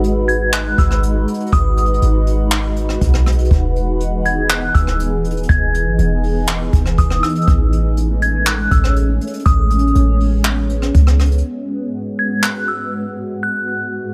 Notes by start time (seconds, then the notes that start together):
Already playing: G#1 G#3 D#4 F#4 B4
0.04 closed hi-hat
0.28 G#6, closed hi-hat
0.53 F#6, clap
0.78 G#1 E6, kick, closed hi-hat
0.91 cross-stick
1.03 closed hi-hat
1.28 closed hi-hat
1.34 closed hi-hat
1.40 closed hi-hat
1.46 closed hi-hat
1.52 G#1 D#6, kick, closed hi-hat
1.77 closed hi-hat
1.86 closed hi-hat
1.94 closed hi-hat
2.02 G#1, closed hi-hat
2.27 closed hi-hat
2.52 clap
2.76 closed hi-hat
2.89 cross-stick
3.01 B1, kick, closed hi-hat
3.14 cross-stick
3.26 cross-stick, closed hi-hat
3.32 closed hi-hat
3.39 closed hi-hat
3.45 closed hi-hat
3.51 E1 E3 B3 G#4, kick, closed hi-hat
3.76 closed hi-hat
4.01 closed hi-hat
4.25 G#6, closed hi-hat
4.50 F#6, clap
4.74 D#1 E6, kick, closed hi-hat
4.87 cross-stick
5.00 closed hi-hat
5.24 closed hi-hat
5.31 closed hi-hat
5.37 closed hi-hat
5.43 closed hi-hat
5.49 E1 G#6, kick, closed hi-hat
5.74 closed hi-hat
5.86 G#1
5.99 E1, closed hi-hat
6.24 open hi-hat
6.48 clap
6.73 E1, kick, closed hi-hat
6.86 cross-stick
6.98 E1 D#6, kick, closed hi-hat
7.10 cross-stick
7.23 E6, cross-stick, closed hi-hat
7.29 closed hi-hat
7.35 closed hi-hat
7.41 closed hi-hat
7.48 A1 G#3 A3 C#4, kick, closed hi-hat
7.73 closed hi-hat
7.97 closed hi-hat
8.22 G#6, closed hi-hat
8.47 F#6, clap
8.71 A1 E6, kick, closed hi-hat
8.84 cross-stick
8.96 closed hi-hat
9.21 closed hi-hat
9.27 closed hi-hat
9.33 closed hi-hat
9.40 closed hi-hat
9.46 A1 B3 D#6, kick, closed hi-hat
9.71 closed hi-hat
9.79 closed hi-hat
9.87 closed hi-hat
9.95 A1, closed hi-hat
10.20 open hi-hat
10.45 clap
10.70 closed hi-hat
10.82 cross-stick
10.95 C#2, kick, closed hi-hat
11.07 cross-stick
11.19 cross-stick, closed hi-hat
11.26 closed hi-hat
11.32 closed hi-hat
11.38 closed hi-hat
11.44 G#2 G#3 B3 F#4
12.19 G#6
12.43 F#6, clap
12.68 E6
13.43 F#6